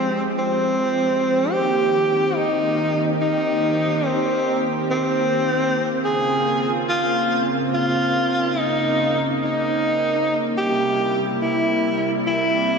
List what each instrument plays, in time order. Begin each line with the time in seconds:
Already playing: analog synth pad F3 G#3 C4 G4, tenor saxophone C4
0.38 tenor saxophone C4
1.51 analog synth pad D#3 A#3 G4, tenor saxophone G4
2.37 tenor saxophone D#4
3.21 tenor saxophone D#4
4.06 tenor saxophone C4
4.91 tenor saxophone C4
6.04 analog synth pad C#3 F4, tenor saxophone G#4
6.89 tenor saxophone F4
7.74 tenor saxophone F4
8.31 analog synth pad D#4
8.59 tenor saxophone D#4
9.44 tenor saxophone D#4
10.57 analog synth pad C3 G3 E4, tenor saxophone G4
11.42 tenor saxophone E4
12.27 tenor saxophone E4